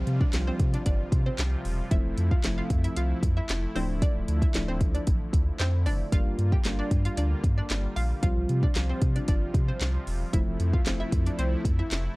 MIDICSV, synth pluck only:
0, 0, Header, 1, 2, 480
1, 0, Start_track
1, 0, Tempo, 526316
1, 1745, Time_signature, 4, 2, 24, 8
1, 11091, End_track
2, 0, Start_track
2, 0, Title_t, "Synth pluck"
2, 0, Program_c, 0, 84
2, 190, Note_on_c, 0, 74, 75
2, 198, Note_on_c, 0, 62, 59
2, 282, Note_off_c, 0, 74, 0
2, 286, Note_off_c, 0, 62, 0
2, 432, Note_on_c, 0, 72, 82
2, 439, Note_on_c, 0, 60, 65
2, 522, Note_off_c, 0, 72, 0
2, 527, Note_off_c, 0, 60, 0
2, 672, Note_on_c, 0, 74, 74
2, 679, Note_on_c, 0, 62, 59
2, 762, Note_off_c, 0, 74, 0
2, 767, Note_off_c, 0, 62, 0
2, 784, Note_on_c, 0, 74, 86
2, 792, Note_on_c, 0, 62, 67
2, 887, Note_off_c, 0, 74, 0
2, 891, Note_off_c, 0, 62, 0
2, 1151, Note_on_c, 0, 72, 81
2, 1158, Note_on_c, 0, 60, 64
2, 1242, Note_off_c, 0, 72, 0
2, 1246, Note_off_c, 0, 60, 0
2, 1742, Note_on_c, 0, 76, 95
2, 1750, Note_on_c, 0, 64, 72
2, 1936, Note_off_c, 0, 76, 0
2, 1941, Note_off_c, 0, 64, 0
2, 2111, Note_on_c, 0, 77, 78
2, 2119, Note_on_c, 0, 65, 60
2, 2202, Note_off_c, 0, 77, 0
2, 2206, Note_off_c, 0, 65, 0
2, 2351, Note_on_c, 0, 77, 78
2, 2359, Note_on_c, 0, 65, 63
2, 2442, Note_off_c, 0, 77, 0
2, 2447, Note_off_c, 0, 65, 0
2, 2591, Note_on_c, 0, 76, 77
2, 2599, Note_on_c, 0, 64, 61
2, 2682, Note_off_c, 0, 76, 0
2, 2687, Note_off_c, 0, 64, 0
2, 2704, Note_on_c, 0, 77, 90
2, 2711, Note_on_c, 0, 65, 67
2, 2807, Note_off_c, 0, 77, 0
2, 2811, Note_off_c, 0, 65, 0
2, 3071, Note_on_c, 0, 76, 80
2, 3078, Note_on_c, 0, 64, 64
2, 3162, Note_off_c, 0, 76, 0
2, 3166, Note_off_c, 0, 64, 0
2, 3424, Note_on_c, 0, 72, 87
2, 3432, Note_on_c, 0, 60, 72
2, 3527, Note_off_c, 0, 72, 0
2, 3531, Note_off_c, 0, 60, 0
2, 3664, Note_on_c, 0, 74, 96
2, 3672, Note_on_c, 0, 62, 71
2, 3857, Note_off_c, 0, 74, 0
2, 3862, Note_off_c, 0, 62, 0
2, 4031, Note_on_c, 0, 76, 78
2, 4038, Note_on_c, 0, 64, 59
2, 4122, Note_off_c, 0, 76, 0
2, 4126, Note_off_c, 0, 64, 0
2, 4271, Note_on_c, 0, 72, 84
2, 4279, Note_on_c, 0, 60, 64
2, 4362, Note_off_c, 0, 72, 0
2, 4367, Note_off_c, 0, 60, 0
2, 4510, Note_on_c, 0, 74, 78
2, 4517, Note_on_c, 0, 62, 65
2, 4842, Note_off_c, 0, 74, 0
2, 4846, Note_off_c, 0, 62, 0
2, 5104, Note_on_c, 0, 72, 87
2, 5111, Note_on_c, 0, 60, 70
2, 5206, Note_off_c, 0, 72, 0
2, 5210, Note_off_c, 0, 60, 0
2, 5344, Note_on_c, 0, 74, 85
2, 5352, Note_on_c, 0, 62, 68
2, 5447, Note_off_c, 0, 74, 0
2, 5451, Note_off_c, 0, 62, 0
2, 5585, Note_on_c, 0, 77, 108
2, 5592, Note_on_c, 0, 65, 80
2, 5778, Note_off_c, 0, 77, 0
2, 5782, Note_off_c, 0, 65, 0
2, 5951, Note_on_c, 0, 79, 74
2, 5959, Note_on_c, 0, 67, 58
2, 6042, Note_off_c, 0, 79, 0
2, 6047, Note_off_c, 0, 67, 0
2, 6191, Note_on_c, 0, 74, 78
2, 6197, Note_on_c, 0, 62, 61
2, 6282, Note_off_c, 0, 74, 0
2, 6286, Note_off_c, 0, 62, 0
2, 6431, Note_on_c, 0, 77, 88
2, 6439, Note_on_c, 0, 65, 67
2, 6522, Note_off_c, 0, 77, 0
2, 6527, Note_off_c, 0, 65, 0
2, 6544, Note_on_c, 0, 74, 82
2, 6551, Note_on_c, 0, 62, 62
2, 6646, Note_off_c, 0, 74, 0
2, 6650, Note_off_c, 0, 62, 0
2, 6910, Note_on_c, 0, 74, 80
2, 6918, Note_on_c, 0, 62, 64
2, 7001, Note_off_c, 0, 74, 0
2, 7006, Note_off_c, 0, 62, 0
2, 7262, Note_on_c, 0, 77, 85
2, 7269, Note_on_c, 0, 65, 65
2, 7365, Note_off_c, 0, 77, 0
2, 7370, Note_off_c, 0, 65, 0
2, 7503, Note_on_c, 0, 77, 105
2, 7511, Note_on_c, 0, 65, 82
2, 7697, Note_off_c, 0, 77, 0
2, 7701, Note_off_c, 0, 65, 0
2, 7872, Note_on_c, 0, 74, 81
2, 7878, Note_on_c, 0, 62, 59
2, 7962, Note_off_c, 0, 74, 0
2, 7966, Note_off_c, 0, 62, 0
2, 8111, Note_on_c, 0, 72, 80
2, 8118, Note_on_c, 0, 60, 63
2, 8202, Note_off_c, 0, 72, 0
2, 8206, Note_off_c, 0, 60, 0
2, 8351, Note_on_c, 0, 74, 74
2, 8358, Note_on_c, 0, 62, 58
2, 8442, Note_off_c, 0, 74, 0
2, 8446, Note_off_c, 0, 62, 0
2, 8464, Note_on_c, 0, 74, 87
2, 8471, Note_on_c, 0, 62, 68
2, 8567, Note_off_c, 0, 74, 0
2, 8570, Note_off_c, 0, 62, 0
2, 8832, Note_on_c, 0, 72, 78
2, 8838, Note_on_c, 0, 60, 63
2, 8922, Note_off_c, 0, 72, 0
2, 8926, Note_off_c, 0, 60, 0
2, 9423, Note_on_c, 0, 76, 94
2, 9430, Note_on_c, 0, 64, 69
2, 9617, Note_off_c, 0, 76, 0
2, 9621, Note_off_c, 0, 64, 0
2, 9792, Note_on_c, 0, 77, 73
2, 9798, Note_on_c, 0, 65, 60
2, 9883, Note_off_c, 0, 77, 0
2, 9886, Note_off_c, 0, 65, 0
2, 10031, Note_on_c, 0, 76, 79
2, 10039, Note_on_c, 0, 64, 64
2, 10122, Note_off_c, 0, 76, 0
2, 10127, Note_off_c, 0, 64, 0
2, 10271, Note_on_c, 0, 74, 76
2, 10278, Note_on_c, 0, 62, 61
2, 10362, Note_off_c, 0, 74, 0
2, 10366, Note_off_c, 0, 62, 0
2, 10384, Note_on_c, 0, 72, 91
2, 10391, Note_on_c, 0, 60, 70
2, 10487, Note_off_c, 0, 72, 0
2, 10490, Note_off_c, 0, 60, 0
2, 10751, Note_on_c, 0, 76, 84
2, 10758, Note_on_c, 0, 64, 66
2, 10842, Note_off_c, 0, 76, 0
2, 10846, Note_off_c, 0, 64, 0
2, 11091, End_track
0, 0, End_of_file